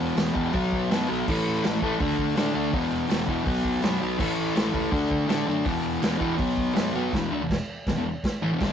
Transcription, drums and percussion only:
0.17 snare, open hi-hat, tambourine
0.36 kick
0.53 kick, open hi-hat
0.72 kick
0.91 snare, open hi-hat, tambourine
1.28 kick, crash
1.64 snare, open hi-hat, tambourine
1.82 kick
2.00 kick, open hi-hat
2.19 kick
2.36 snare, open hi-hat, tambourine
2.73 kick, open hi-hat
3.10 snare, open hi-hat, tambourine
3.28 kick
3.46 kick, open hi-hat
3.65 kick
3.82 snare, open hi-hat, tambourine
4.19 kick, crash
4.56 snare, open hi-hat, tambourine
4.74 kick
4.92 kick, open hi-hat
5.11 kick
5.29 snare, open hi-hat, tambourine
5.65 kick, open hi-hat
6.02 snare, open hi-hat, tambourine
6.21 kick
6.38 kick, open hi-hat
6.57 kick
6.76 snare, open hi-hat, tambourine
7.13 kick, snare, crash
7.50 kick, snare, crash
7.87 kick, snare, crash
8.24 kick, snare, crash
8.60 kick, snare, crash

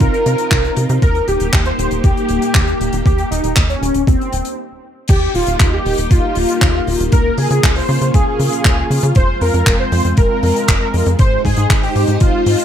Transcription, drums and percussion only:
0.00 kick, closed hi-hat
0.14 closed hi-hat
0.26 closed hi-hat
0.38 closed hi-hat
0.51 kick, clap, closed hi-hat
0.64 closed hi-hat
0.77 closed hi-hat
0.89 closed hi-hat
1.02 kick, closed hi-hat
1.15 closed hi-hat
1.28 closed hi-hat
1.40 closed hi-hat
1.53 kick, clap, closed hi-hat
1.65 closed hi-hat
1.79 closed hi-hat
1.91 closed hi-hat
2.04 kick, closed hi-hat
2.17 closed hi-hat
2.29 closed hi-hat
2.42 closed hi-hat
2.55 kick, clap, closed hi-hat
2.67 closed hi-hat
2.81 closed hi-hat
2.93 closed hi-hat
3.06 kick, closed hi-hat
3.18 closed hi-hat
3.32 closed hi-hat
3.44 closed hi-hat
3.56 kick, clap, closed hi-hat
3.70 closed hi-hat
3.83 closed hi-hat
3.94 closed hi-hat
4.07 kick, closed hi-hat
4.21 closed hi-hat
4.33 closed hi-hat
4.45 closed hi-hat
5.08 kick, closed hi-hat, crash
5.35 open hi-hat
5.47 closed hi-hat
5.60 kick, clap, closed hi-hat
5.86 open hi-hat
5.98 closed hi-hat
6.11 kick, closed hi-hat
6.35 open hi-hat
6.49 closed hi-hat
6.61 kick, clap, closed hi-hat
6.87 open hi-hat
7.00 closed hi-hat
7.12 kick, closed hi-hat
7.38 open hi-hat
7.51 closed hi-hat
7.63 kick, clap, closed hi-hat
7.76 open hi-hat
7.89 open hi-hat
8.01 closed hi-hat
8.14 kick, closed hi-hat
8.39 open hi-hat
8.52 closed hi-hat
8.65 kick, clap, closed hi-hat
8.91 open hi-hat
9.03 closed hi-hat
9.15 kick, closed hi-hat
9.41 open hi-hat
9.54 closed hi-hat
9.67 kick, clap, closed hi-hat
9.92 open hi-hat
10.05 closed hi-hat
10.17 kick, closed hi-hat
10.43 open hi-hat
10.56 closed hi-hat
10.68 kick, clap, closed hi-hat
10.94 open hi-hat
11.06 closed hi-hat
11.19 kick, closed hi-hat
11.45 kick, open hi-hat
11.56 closed hi-hat
11.70 kick, clap, closed hi-hat
11.83 open hi-hat
11.96 open hi-hat
12.07 closed hi-hat
12.20 kick, closed hi-hat
12.46 open hi-hat
12.59 closed hi-hat

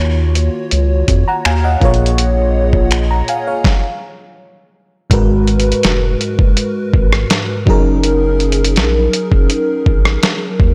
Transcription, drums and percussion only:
0.35 closed hi-hat
0.71 closed hi-hat
1.08 kick, closed hi-hat
1.45 finger snap
1.81 kick, closed hi-hat
1.94 closed hi-hat
2.06 closed hi-hat
2.18 closed hi-hat
2.73 kick
2.91 finger snap, closed hi-hat
3.28 closed hi-hat
3.64 kick, snare
5.11 kick, closed hi-hat
5.47 closed hi-hat
5.60 closed hi-hat
5.72 closed hi-hat
5.83 snare, closed hi-hat
6.21 closed hi-hat
6.39 kick
6.57 closed hi-hat
6.94 kick
7.13 cross-stick
7.30 snare, closed hi-hat
7.67 kick
8.04 closed hi-hat
8.40 closed hi-hat
8.52 closed hi-hat
8.65 closed hi-hat
8.76 snare, closed hi-hat
9.13 closed hi-hat
9.32 kick
9.50 closed hi-hat
9.86 kick
10.05 cross-stick
10.23 snare, closed hi-hat
10.60 kick

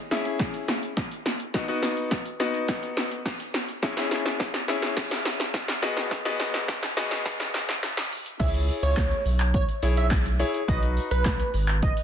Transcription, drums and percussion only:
0.11 snare, open hi-hat, shaker
0.25 closed hi-hat, shaker
0.39 kick, snare, closed hi-hat, shaker
0.54 closed hi-hat, shaker
0.68 snare, open hi-hat, shaker
0.83 closed hi-hat, shaker
0.97 kick, snare, closed hi-hat, shaker
1.12 closed hi-hat, shaker
1.26 snare, open hi-hat, shaker
1.40 closed hi-hat, shaker
1.54 kick, snare, closed hi-hat, shaker
1.68 closed hi-hat, shaker
1.83 snare, open hi-hat, shaker
1.97 closed hi-hat, shaker
2.11 kick, snare, closed hi-hat, shaker
2.26 closed hi-hat, shaker
2.40 snare, open hi-hat, shaker
2.54 closed hi-hat, shaker
2.68 kick, snare, closed hi-hat, shaker
2.83 closed hi-hat, shaker
2.97 snare, open hi-hat, shaker
3.11 closed hi-hat, shaker
3.26 kick, snare, closed hi-hat, shaker
3.40 closed hi-hat, shaker
3.54 snare, open hi-hat, shaker
3.69 closed hi-hat, shaker
3.83 kick, snare, closed hi-hat, shaker
3.97 snare, closed hi-hat, shaker
4.11 snare, open hi-hat, shaker
4.26 snare, closed hi-hat, shaker
4.40 kick, snare, closed hi-hat, shaker
4.54 snare, closed hi-hat, shaker
4.68 snare, open hi-hat, shaker
4.82 snare, closed hi-hat, shaker
4.97 kick, snare, closed hi-hat, shaker
5.11 snare, closed hi-hat, shaker
5.25 snare, open hi-hat, shaker
5.40 snare, closed hi-hat, shaker
5.54 kick, snare, closed hi-hat, shaker
5.68 snare, closed hi-hat, shaker
5.83 snare, open hi-hat, shaker
5.97 snare, closed hi-hat, shaker
6.11 kick, snare, closed hi-hat, shaker
6.25 snare, closed hi-hat, shaker
6.40 snare, open hi-hat, shaker
6.54 snare, closed hi-hat, shaker
6.68 kick, snare, closed hi-hat, shaker
6.83 snare, closed hi-hat, shaker
6.97 snare, open hi-hat, shaker
7.11 snare, closed hi-hat, shaker
7.25 kick, snare, closed hi-hat, shaker
7.40 snare, closed hi-hat, shaker
7.54 snare, open hi-hat, shaker
7.69 snare, closed hi-hat, shaker
7.83 snare, closed hi-hat, shaker
7.97 snare, closed hi-hat, shaker
8.12 open hi-hat, shaker
8.26 closed hi-hat, shaker
8.40 kick, closed hi-hat, crash, shaker
8.54 closed hi-hat, shaker
8.69 open hi-hat, shaker
8.83 closed hi-hat, shaker
8.97 kick, snare, clap, closed hi-hat, shaker
9.11 closed hi-hat, shaker
9.26 open hi-hat, shaker
9.40 clap, closed hi-hat, shaker
9.54 kick, closed hi-hat, shaker
9.69 closed hi-hat, shaker
9.83 open hi-hat, shaker
9.97 closed hi-hat, shaker
10.11 kick, snare, clap, closed hi-hat, shaker
10.26 closed hi-hat, shaker
10.40 open hi-hat, shaker
10.54 closed hi-hat, shaker
10.68 kick, closed hi-hat, shaker
10.83 closed hi-hat, shaker
10.97 open hi-hat, shaker
11.11 closed hi-hat, shaker
11.25 kick, snare, clap, closed hi-hat, shaker
11.40 closed hi-hat, shaker
11.54 open hi-hat, shaker
11.68 clap, closed hi-hat, shaker
11.83 kick, closed hi-hat, shaker
11.97 closed hi-hat, shaker

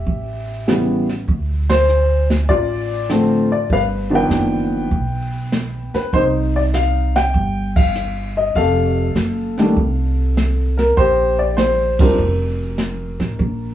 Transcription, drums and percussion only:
0.07 brush sweep, kick
0.68 snare, hi-hat pedal
1.09 snare
1.28 brush sweep, kick
1.70 snare, ride
1.89 hi-hat pedal
2.30 snare
2.49 brush sweep, kick
3.10 snare, hi-hat pedal
3.70 brush sweep, kick
4.31 snare, hi-hat pedal
4.91 brush sweep, kick
5.52 snare, hi-hat pedal
5.94 snare
6.13 brush sweep, kick
6.74 snare, hi-hat pedal
7.16 snare
7.34 brush sweep, kick
7.76 kick, ride
7.95 hi-hat pedal
8.56 brush sweep, kick
9.16 snare, hi-hat pedal
9.58 snare
9.76 brush sweep, kick
10.37 snare, hi-hat pedal
10.79 snare
10.97 brush sweep, kick
11.58 snare, hi-hat pedal
11.99 kick, ride
12.17 brush sweep
12.78 snare, hi-hat pedal
13.20 snare
13.39 brush sweep, kick

